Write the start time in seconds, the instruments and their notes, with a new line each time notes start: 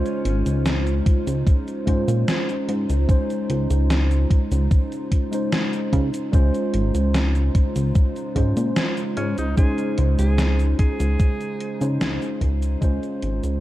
Already playing: ambient pad C#3 G#3 D#4 F4 C5, tine electric piano G#3 C#4 F4 C5
0.06 closed hi-hat, cabasa
0.25 analog synth bass G#1, closed hi-hat
0.46 analog synth bass C#2, closed hi-hat, cabasa
0.66 snare, closed hi-hat, cabasa
0.87 closed hi-hat, cabasa
1.06 kick, closed hi-hat
1.27 analog synth bass C#2, closed hi-hat, cabasa
1.47 kick, closed hi-hat, cabasa
1.68 closed hi-hat, cabasa
1.86 analog synth bass G#2, tine electric piano G#3 C#4 F4 C5, kick, closed hi-hat
2.08 analog synth bass A#2, closed hi-hat, cabasa
2.28 snare, closed hi-hat, cabasa
2.49 closed hi-hat, cabasa
2.69 analog synth bass G#2, closed hi-hat
2.89 analog synth bass C#2, closed hi-hat, cabasa
3.08 tine electric piano G#3 C#4 D#4 C5, kick, closed hi-hat, cabasa
3.30 closed hi-hat, cabasa
3.50 analog synth bass C#2, closed hi-hat
3.70 analog synth bass C#2, closed hi-hat, cabasa
3.90 snare, closed hi-hat, cabasa
4.11 closed hi-hat, cabasa
4.30 kick, closed hi-hat
4.52 analog synth bass C#2, closed hi-hat, cabasa
4.71 kick, closed hi-hat, cabasa
4.92 closed hi-hat, cabasa
5.12 kick, closed hi-hat
5.31 tine electric piano G#3 C#4 D#4 C5, closed hi-hat, cabasa
5.52 snare, closed hi-hat, cabasa
5.73 closed hi-hat, cabasa
5.93 analog synth bass C#3, kick, closed hi-hat
6.14 closed hi-hat, cabasa
6.32 analog synth bass C#2, ambient pad C#3 G#3 C5, tine electric piano G#3 C#4 F4 C5, kick, closed hi-hat, cabasa
6.54 closed hi-hat, cabasa
6.73 analog synth bass G#1, closed hi-hat
6.94 analog synth bass C#2, closed hi-hat, cabasa
7.15 snare, closed hi-hat, cabasa
7.35 closed hi-hat, cabasa
7.55 kick, closed hi-hat
7.76 analog synth bass C#2, closed hi-hat, cabasa
7.95 kick, closed hi-hat, cabasa
8.16 closed hi-hat, cabasa
8.35 analog synth bass G#2, tine electric piano G#3 C#4 F4 C5, kick, closed hi-hat
8.57 analog synth bass A#2, closed hi-hat, cabasa
8.76 snare, closed hi-hat, cabasa
8.97 closed hi-hat, cabasa
9.17 analog synth bass G#2, alto saxophone C#4, closed hi-hat
9.38 analog synth bass C#2, alto saxophone D#4, closed hi-hat, cabasa
9.56 tine electric piano G#3 C#4 D#4 C5, alto saxophone G#4, kick, closed hi-hat, cabasa
9.78 closed hi-hat, cabasa
9.98 analog synth bass C#2, closed hi-hat
10.19 analog synth bass C#2, alto saxophone G#4, closed hi-hat, cabasa
10.38 snare, closed hi-hat, cabasa
10.59 closed hi-hat, cabasa
10.79 alto saxophone G#4, kick, closed hi-hat
11.00 analog synth bass C#2, closed hi-hat, cabasa
11.20 kick, closed hi-hat, cabasa
11.41 closed hi-hat, cabasa
11.60 closed hi-hat
11.80 analog synth bass C#3, tine electric piano G#3 C#4 D#4 C5, closed hi-hat, cabasa
12.01 analog synth bass C#2, snare, closed hi-hat, cabasa
12.22 closed hi-hat, cabasa
12.41 analog synth bass C#2, kick, closed hi-hat
12.62 closed hi-hat, cabasa
12.81 analog synth bass C#2, tine electric piano G#3 C#4 F4 C5, ambient pad F4, kick, closed hi-hat, cabasa
13.03 closed hi-hat, cabasa
13.22 analog synth bass G#1, closed hi-hat
13.43 analog synth bass C#2, closed hi-hat, cabasa